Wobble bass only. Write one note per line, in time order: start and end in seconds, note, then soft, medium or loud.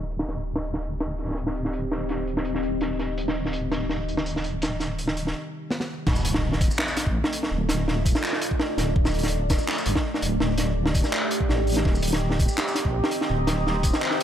0.00 0.27 D1 medium
0.28 5.35 D1 medium
6.07 6.69 D1 loud
7.07 7.23 A1 medium
7.52 8.14 D1 loud
8.78 8.94 D1 loud
8.96 9.58 D1 loud
9.86 9.95 G1 loud
10.23 10.39 D1 medium
10.41 11.03 D1 loud
11.49 11.84 A1 medium
11.85 12.48 D1 loud
12.85 13.02 A#1 medium
13.30 13.92 D1 loud